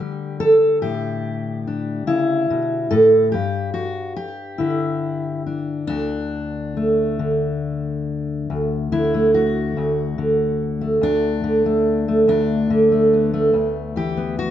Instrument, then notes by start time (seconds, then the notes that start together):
steel-string acoustic guitar
Already playing: D3 D4 G4
0.00 G3
0.40 A4
0.82 A2 G4
1.67 D4
2.07 C#3 E4
2.50 B2
2.91 A2 A4
3.32 G2 G4
3.74 F#4
4.16 G4
4.58 D3 E4
5.46 D4
5.87 D2 D4
6.77 A3
7.19 D3
8.50 D2
8.92 D3 E4
9.14 A3
9.34 F#4
9.77 D2
10.18 D3
10.81 A3
11.01 D2 D4
11.44 D3
11.66 A3
12.08 A3
12.28 D2 D4
12.70 D3
12.92 A3
13.13 B3
13.34 A3
13.53 D2
13.96 E3 G4
14.17 B3
14.39 F#4